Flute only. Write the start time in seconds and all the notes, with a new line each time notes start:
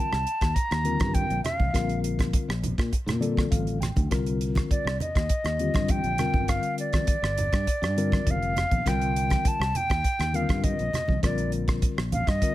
Already playing: A5
0.54 A#5
1.14 G5
1.44 F5
4.71 D5
5.01 D#5
5.91 G5
6.49 F5
6.80 D5
8.31 F5
8.88 G5
9.48 A5
9.76 G5
10.35 F5
10.64 D#5
11.25 D5
12.13 F5
12.28 D#5